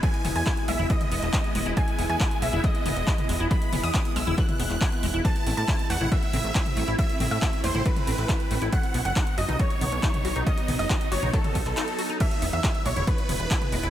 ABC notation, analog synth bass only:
X:1
M:4/4
L:1/16
Q:1/4=138
K:E
V:1 name="Analog synth bass" clef=bass
z2 E,,, E,, z2 B,,, E,,, z2 E,,, E,,, z2 E,,, E,,, | z2 E,,, E,, z2 B,,, E,,, z2 E,,, E,,, z2 E,,, E,,, | z2 E,,, E,, z2 B,,, E,,, z2 E,,, E,,, z2 E,,, E,,, | z2 A,,, A,, z2 E,, A,,, z2 A,,, A,,, z2 A,,, A,,, |
z2 A,,, A,, z2 E,, A,,, z2 A,,, A,,, z2 A,,, A,,, | z2 B,,, F,,, z2 F,,, B,,, z2 B,,, B,,, z2 B,,, B,,, | z2 B,,, F,,, z2 F,,, B,,, z2 B,,, B,,, z4 | z2 E,,, E,, z2 B,,, E,,, z2 E,,, E,,, z2 E,,, E,,, |]